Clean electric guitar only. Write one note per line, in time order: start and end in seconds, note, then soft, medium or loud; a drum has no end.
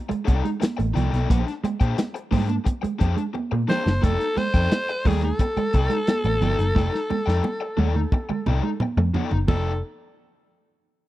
0.09 0.19 G#3 medium
0.28 muted clean electric guitar stroke soft
0.45 0.54 G#3 medium
0.62 muted clean electric guitar stroke soft
0.79 0.88 A3 medium
0.96 1.06 F3 medium
1.30 1.40 A#3 medium
1.64 1.73 G#3 medium
1.81 muted clean electric guitar stroke soft
1.98 muted clean electric guitar stroke soft
2.31 2.41 A#3 medium
2.49 2.58 A#3 medium
2.83 2.93 G#3 medium
2.99 muted clean electric guitar stroke soft
3.16 3.26 G#3 medium
3.34 muted clean electric guitar stroke soft
3.52 3.62 A#3 medium
3.68 3.78 F3 medium
4.03 4.13 A3 medium
4.37 4.47 G#3 loud
4.71 muted clean electric guitar stroke soft
5.05 5.15 A3 medium
5.23 5.32 A3 medium
5.57 5.66 G#3 medium
5.74 muted clean electric guitar stroke soft
5.90 6.00 G#3 medium
6.08 muted clean electric guitar stroke soft
6.24 6.34 A3 medium
6.41 6.51 F3 medium
6.75 6.85 A3 medium
7.10 7.20 G#3 medium
7.27 muted clean electric guitar stroke soft
7.43 muted clean electric guitar stroke medium
7.77 7.87 A3 medium
7.95 8.05 A3 medium
8.30 8.40 G#3 medium
8.46 muted clean electric guitar stroke soft
8.63 8.73 G#3 medium
8.80 muted clean electric guitar stroke soft
8.98 9.07 A3 medium
9.13 9.24 F3 medium
9.48 9.69 F3 medium